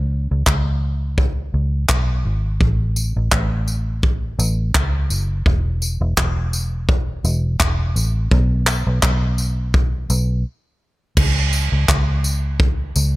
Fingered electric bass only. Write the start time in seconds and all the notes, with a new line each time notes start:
Already playing: C#2
0.31 C#2
0.47 C#2
1.54 C#2
1.89 B1
2.25 G#1
2.60 A1
3.16 A1
3.32 A1
4.39 A1
4.75 C#2
5.10 F#1
5.46 E1
6.01 E1
6.17 E1
7.24 E1
7.60 E1
7.96 A1
8.32 B1
8.87 B1
9.03 B1
10.10 B1
11.17 C#2
11.72 C#2
11.89 C#2
12.96 C#2